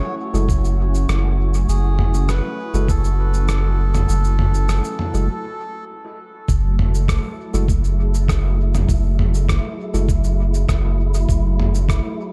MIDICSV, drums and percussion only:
0, 0, Header, 1, 2, 480
1, 0, Start_track
1, 0, Key_signature, 3, "minor"
1, 0, Tempo, 600000
1, 1350, Time_signature, 4, 2, 24, 8
1, 9860, End_track
2, 0, Start_track
2, 0, Title_t, "Drums"
2, 276, Note_on_c, 9, 82, 39
2, 356, Note_off_c, 9, 82, 0
2, 389, Note_on_c, 9, 36, 93
2, 396, Note_on_c, 9, 82, 47
2, 469, Note_off_c, 9, 36, 0
2, 476, Note_off_c, 9, 82, 0
2, 517, Note_on_c, 9, 82, 26
2, 597, Note_off_c, 9, 82, 0
2, 757, Note_on_c, 9, 82, 37
2, 837, Note_off_c, 9, 82, 0
2, 874, Note_on_c, 9, 37, 73
2, 874, Note_on_c, 9, 82, 47
2, 954, Note_off_c, 9, 37, 0
2, 954, Note_off_c, 9, 82, 0
2, 1234, Note_on_c, 9, 82, 39
2, 1314, Note_off_c, 9, 82, 0
2, 1355, Note_on_c, 9, 82, 50
2, 1435, Note_off_c, 9, 82, 0
2, 1590, Note_on_c, 9, 45, 77
2, 1670, Note_off_c, 9, 45, 0
2, 1714, Note_on_c, 9, 82, 39
2, 1794, Note_off_c, 9, 82, 0
2, 1830, Note_on_c, 9, 37, 69
2, 1830, Note_on_c, 9, 82, 48
2, 1910, Note_off_c, 9, 37, 0
2, 1910, Note_off_c, 9, 82, 0
2, 2195, Note_on_c, 9, 82, 38
2, 2275, Note_off_c, 9, 82, 0
2, 2308, Note_on_c, 9, 36, 94
2, 2312, Note_on_c, 9, 82, 47
2, 2388, Note_off_c, 9, 36, 0
2, 2392, Note_off_c, 9, 82, 0
2, 2434, Note_on_c, 9, 82, 27
2, 2514, Note_off_c, 9, 82, 0
2, 2672, Note_on_c, 9, 82, 38
2, 2752, Note_off_c, 9, 82, 0
2, 2789, Note_on_c, 9, 37, 72
2, 2789, Note_on_c, 9, 82, 51
2, 2869, Note_off_c, 9, 37, 0
2, 2869, Note_off_c, 9, 82, 0
2, 3156, Note_on_c, 9, 45, 78
2, 3156, Note_on_c, 9, 82, 39
2, 3236, Note_off_c, 9, 45, 0
2, 3236, Note_off_c, 9, 82, 0
2, 3273, Note_on_c, 9, 82, 52
2, 3353, Note_off_c, 9, 82, 0
2, 3394, Note_on_c, 9, 82, 28
2, 3474, Note_off_c, 9, 82, 0
2, 3511, Note_on_c, 9, 45, 78
2, 3591, Note_off_c, 9, 45, 0
2, 3634, Note_on_c, 9, 82, 42
2, 3714, Note_off_c, 9, 82, 0
2, 3753, Note_on_c, 9, 37, 70
2, 3753, Note_on_c, 9, 82, 52
2, 3833, Note_off_c, 9, 37, 0
2, 3833, Note_off_c, 9, 82, 0
2, 3875, Note_on_c, 9, 82, 27
2, 3955, Note_off_c, 9, 82, 0
2, 3992, Note_on_c, 9, 45, 62
2, 4072, Note_off_c, 9, 45, 0
2, 4114, Note_on_c, 9, 82, 40
2, 4194, Note_off_c, 9, 82, 0
2, 5188, Note_on_c, 9, 36, 103
2, 5192, Note_on_c, 9, 82, 53
2, 5268, Note_off_c, 9, 36, 0
2, 5272, Note_off_c, 9, 82, 0
2, 5433, Note_on_c, 9, 45, 80
2, 5513, Note_off_c, 9, 45, 0
2, 5557, Note_on_c, 9, 82, 42
2, 5637, Note_off_c, 9, 82, 0
2, 5667, Note_on_c, 9, 36, 100
2, 5673, Note_on_c, 9, 37, 75
2, 5673, Note_on_c, 9, 82, 52
2, 5747, Note_off_c, 9, 36, 0
2, 5753, Note_off_c, 9, 37, 0
2, 5753, Note_off_c, 9, 82, 0
2, 6034, Note_on_c, 9, 82, 43
2, 6114, Note_off_c, 9, 82, 0
2, 6147, Note_on_c, 9, 36, 98
2, 6153, Note_on_c, 9, 82, 51
2, 6227, Note_off_c, 9, 36, 0
2, 6233, Note_off_c, 9, 82, 0
2, 6274, Note_on_c, 9, 82, 29
2, 6354, Note_off_c, 9, 82, 0
2, 6516, Note_on_c, 9, 82, 42
2, 6596, Note_off_c, 9, 82, 0
2, 6628, Note_on_c, 9, 36, 97
2, 6635, Note_on_c, 9, 37, 77
2, 6635, Note_on_c, 9, 82, 52
2, 6708, Note_off_c, 9, 36, 0
2, 6715, Note_off_c, 9, 37, 0
2, 6715, Note_off_c, 9, 82, 0
2, 6997, Note_on_c, 9, 45, 77
2, 6997, Note_on_c, 9, 82, 44
2, 7077, Note_off_c, 9, 45, 0
2, 7077, Note_off_c, 9, 82, 0
2, 7109, Note_on_c, 9, 36, 103
2, 7114, Note_on_c, 9, 82, 51
2, 7189, Note_off_c, 9, 36, 0
2, 7194, Note_off_c, 9, 82, 0
2, 7353, Note_on_c, 9, 45, 77
2, 7433, Note_off_c, 9, 45, 0
2, 7475, Note_on_c, 9, 82, 43
2, 7555, Note_off_c, 9, 82, 0
2, 7589, Note_on_c, 9, 36, 105
2, 7595, Note_on_c, 9, 37, 81
2, 7595, Note_on_c, 9, 82, 52
2, 7669, Note_off_c, 9, 36, 0
2, 7675, Note_off_c, 9, 37, 0
2, 7675, Note_off_c, 9, 82, 0
2, 7956, Note_on_c, 9, 82, 43
2, 8036, Note_off_c, 9, 82, 0
2, 8068, Note_on_c, 9, 36, 108
2, 8072, Note_on_c, 9, 82, 52
2, 8148, Note_off_c, 9, 36, 0
2, 8152, Note_off_c, 9, 82, 0
2, 8192, Note_on_c, 9, 82, 29
2, 8272, Note_off_c, 9, 82, 0
2, 8434, Note_on_c, 9, 82, 41
2, 8514, Note_off_c, 9, 82, 0
2, 8549, Note_on_c, 9, 36, 103
2, 8552, Note_on_c, 9, 37, 80
2, 8552, Note_on_c, 9, 82, 53
2, 8629, Note_off_c, 9, 36, 0
2, 8632, Note_off_c, 9, 37, 0
2, 8632, Note_off_c, 9, 82, 0
2, 8914, Note_on_c, 9, 82, 43
2, 8994, Note_off_c, 9, 82, 0
2, 9029, Note_on_c, 9, 36, 108
2, 9035, Note_on_c, 9, 82, 53
2, 9109, Note_off_c, 9, 36, 0
2, 9115, Note_off_c, 9, 82, 0
2, 9276, Note_on_c, 9, 45, 75
2, 9356, Note_off_c, 9, 45, 0
2, 9397, Note_on_c, 9, 82, 42
2, 9477, Note_off_c, 9, 82, 0
2, 9509, Note_on_c, 9, 36, 109
2, 9517, Note_on_c, 9, 37, 78
2, 9517, Note_on_c, 9, 82, 52
2, 9589, Note_off_c, 9, 36, 0
2, 9597, Note_off_c, 9, 37, 0
2, 9597, Note_off_c, 9, 82, 0
2, 9860, End_track
0, 0, End_of_file